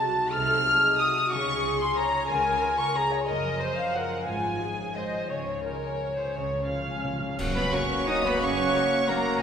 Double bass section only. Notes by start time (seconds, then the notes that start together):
0.33 C2
1.31 C#2
2.29 C#2
3.28 F#1
4.27 G#1
4.96 G#1
5.30 C#2
6.34 C#2
7.39 F#1
8.41 F#1